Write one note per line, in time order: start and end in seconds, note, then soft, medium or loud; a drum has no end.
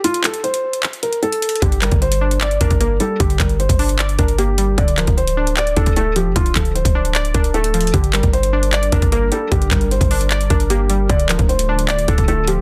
0.04 0.19 F4 loud
0.04 closed hi-hat medium
0.14 closed hi-hat medium
0.24 0.39 A4 medium
0.24 clap loud
0.24 closed hi-hat medium
0.34 closed hi-hat medium
0.44 0.81 C5 medium
0.44 closed hi-hat medium
0.54 closed hi-hat medium
0.73 closed hi-hat medium
0.83 clap loud
0.83 closed hi-hat medium
0.93 closed hi-hat medium
1.03 1.18 A#4 medium
1.03 closed hi-hat medium
1.13 closed hi-hat medium
1.23 1.60 A4 medium
1.23 closed hi-hat soft
1.32 closed hi-hat medium
1.42 closed hi-hat medium
1.49 closed hi-hat medium
1.56 closed hi-hat medium
1.62 1.91 G1 loud
1.62 2.61 D3 medium
1.62 1.77 G4 medium
1.62 kick loud
1.62 closed hi-hat medium
1.72 closed hi-hat medium
1.82 2.81 G3 medium
1.82 1.97 A#4 medium
1.82 clap loud
1.82 closed hi-hat medium
1.91 2.58 G1 loud
1.91 kick loud
1.91 closed hi-hat medium
2.02 2.39 C5 medium
2.02 closed hi-hat medium
2.12 closed hi-hat medium
2.21 2.60 D4 medium
2.31 closed hi-hat medium
2.41 3.40 D5 loud
2.41 2.56 D5 medium
2.41 clap loud
2.41 closed hi-hat medium
2.51 closed hi-hat medium
2.61 2.70 G1 loud
2.61 3.59 D4 medium
2.61 2.76 A#4 medium
2.61 kick medium
2.61 closed hi-hat medium
2.70 2.99 G1 loud
2.70 kick loud
2.70 closed hi-hat medium
2.81 3.79 A#3 medium
2.81 2.96 A#4 medium
2.81 closed hi-hat medium
3.00 3.39 G3 medium
3.00 3.15 A4 medium
3.00 closed hi-hat medium
3.20 3.39 G1 loud
3.20 4.19 D3 medium
3.20 3.35 G4 medium
3.20 kick loud
3.20 closed hi-hat medium
3.30 closed hi-hat medium
3.40 3.68 G1 loud
3.40 4.38 G3 medium
3.40 3.55 A#4 medium
3.40 kick loud
3.40 clap loud
3.40 closed hi-hat medium
3.49 closed hi-hat soft
3.60 3.97 C5 medium
3.60 closed hi-hat medium
3.69 4.17 G1 loud
3.69 kick medium
3.69 closed hi-hat medium
3.79 4.17 D4 medium
3.79 open hi-hat medium
3.89 closed hi-hat medium
3.99 4.78 D5 loud
3.99 clap loud
3.99 closed hi-hat medium
4.09 closed hi-hat medium
4.19 4.76 G1 loud
4.19 4.78 D4 medium
4.19 4.34 A#4 medium
4.19 kick medium
4.19 closed hi-hat medium
4.28 closed hi-hat medium
4.38 4.78 A#3 medium
4.38 4.75 G4 medium
4.38 closed hi-hat medium
4.58 4.78 G3 medium
4.58 closed hi-hat medium
4.78 5.06 D1 loud
4.78 5.77 D3 loud
4.78 4.93 D5 medium
4.78 kick loud
4.78 closed hi-hat medium
4.88 closed hi-hat medium
4.98 5.96 F3 medium
4.98 5.13 A#4 medium
4.98 clap loud
4.98 closed hi-hat medium
5.07 5.74 D1 loud
5.07 kick loud
5.07 closed hi-hat medium
5.17 5.54 C5 medium
5.17 closed hi-hat medium
5.27 closed hi-hat medium
5.37 5.75 D4 medium
5.47 closed hi-hat medium
5.57 5.72 D5 medium
5.57 6.56 D5 loud
5.57 clap loud
5.57 closed hi-hat medium
5.67 closed hi-hat medium
5.76 5.86 D1 loud
5.76 6.75 D4 medium
5.76 5.92 A4 medium
5.76 kick loud
5.76 closed hi-hat medium
5.86 6.27 D1 loud
5.86 kick medium
5.86 closed hi-hat medium
5.96 6.95 A3 medium
5.96 6.12 A4 medium
5.96 closed hi-hat medium
6.16 6.54 F3 medium
6.16 6.31 G4 medium
6.16 closed hi-hat medium
6.26 6.35 F1 loud
6.36 6.55 D1 loud
6.36 7.34 D3 medium
6.36 6.51 F4 loud
6.36 kick loud
6.36 closed hi-hat medium
6.46 closed hi-hat medium
6.55 6.84 D1 loud
6.55 7.54 F3 medium
6.55 6.71 A4 medium
6.55 kick loud
6.55 clap loud
6.55 closed hi-hat medium
6.65 closed hi-hat soft
6.75 7.12 C5 medium
6.75 closed hi-hat medium
6.85 7.32 D1 loud
6.85 kick medium
6.85 closed hi-hat medium
6.95 7.33 D4 medium
7.05 closed hi-hat medium
7.15 7.94 D5 loud
7.15 clap loud
7.15 closed hi-hat medium
7.25 closed hi-hat medium
7.34 7.91 D1 loud
7.34 7.94 D4 medium
7.34 7.50 A#4 medium
7.34 kick medium
7.34 closed hi-hat medium
7.44 closed hi-hat medium
7.54 7.94 A3 medium
7.54 7.91 A4 medium
7.54 closed hi-hat soft
7.64 closed hi-hat medium
7.74 7.94 F3 medium
7.74 closed hi-hat medium
7.81 closed hi-hat medium
7.87 closed hi-hat medium
7.94 8.22 G1 loud
7.94 8.92 D3 medium
7.94 11.06 G3 medium
7.94 11.06 D4 medium
7.94 8.09 G4 medium
7.94 11.06 A#4 medium
7.94 kick loud
7.94 closed hi-hat medium
8.04 closed hi-hat medium
8.13 9.12 G3 medium
8.13 8.29 A#4 medium
8.13 clap loud
8.13 closed hi-hat medium
8.23 8.90 G1 loud
8.23 kick loud
8.23 closed hi-hat medium
8.33 8.70 C5 medium
8.33 closed hi-hat medium
8.43 closed hi-hat medium
8.53 8.91 D4 medium
8.63 closed hi-hat medium
8.73 9.71 D5 loud
8.73 8.88 D5 medium
8.73 clap loud
8.73 closed hi-hat medium
8.83 closed hi-hat medium
8.92 9.02 G1 loud
8.92 9.91 D4 medium
8.92 9.08 A#4 medium
8.92 kick loud
8.92 closed hi-hat medium
9.02 9.31 G1 loud
9.02 kick medium
9.02 closed hi-hat medium
9.12 10.11 A#3 medium
9.12 9.27 A#4 medium
9.12 closed hi-hat medium
9.32 9.70 G3 medium
9.32 9.47 A4 medium
9.32 closed hi-hat medium
9.52 9.71 G1 loud
9.52 10.50 D3 medium
9.52 9.67 G4 loud
9.52 kick loud
9.52 closed hi-hat medium
9.62 closed hi-hat medium
9.71 10.00 G1 loud
9.71 10.70 G3 medium
9.71 9.86 A#4 medium
9.71 kick loud
9.71 clap loud
9.71 closed hi-hat medium
9.81 closed hi-hat medium
9.91 10.28 C5 medium
9.91 closed hi-hat medium
10.01 10.48 G1 loud
10.01 kick medium
10.01 closed hi-hat medium
10.11 10.49 D4 medium
10.11 open hi-hat medium
10.21 closed hi-hat medium
10.30 11.09 D5 loud
10.30 clap loud
10.30 closed hi-hat medium
10.41 closed hi-hat medium
10.50 11.07 G1 loud
10.50 11.09 D4 medium
10.50 10.66 A#4 medium
10.50 kick medium
10.50 closed hi-hat medium
10.60 closed hi-hat medium
10.70 11.10 A#3 medium
10.70 11.07 G4 medium
10.70 closed hi-hat medium
10.90 11.10 G3 medium
10.90 closed hi-hat medium
11.10 11.38 D1 loud
11.10 12.61 D3 medium
11.10 12.08 D3 loud
11.10 12.61 A3 medium
11.10 12.61 F4 medium
11.10 11.25 D5 medium
11.10 kick loud
11.10 closed hi-hat medium
11.20 closed hi-hat medium
11.29 12.28 F3 medium
11.29 11.44 A#4 medium
11.29 clap loud
11.29 closed hi-hat medium
11.39 12.05 D1 loud
11.39 kick loud
11.39 closed hi-hat medium
11.49 11.86 C5 medium
11.49 closed hi-hat medium
11.59 closed hi-hat medium
11.69 12.07 D4 medium
11.79 closed hi-hat medium
11.88 12.04 D5 medium
11.88 12.61 D5 loud
11.88 clap loud
11.88 closed hi-hat medium
11.99 closed hi-hat medium
12.08 12.18 D1 loud
12.08 12.61 D4 medium
12.08 12.23 A4 medium
12.08 kick loud
12.08 closed hi-hat medium
12.18 12.59 D1 loud
12.18 kick loud
12.18 closed hi-hat medium
12.28 12.61 A3 medium
12.28 12.43 A4 medium
12.28 closed hi-hat medium
12.48 12.61 F3 medium
12.48 12.61 G4 medium
12.48 closed hi-hat medium
12.58 12.61 F1 loud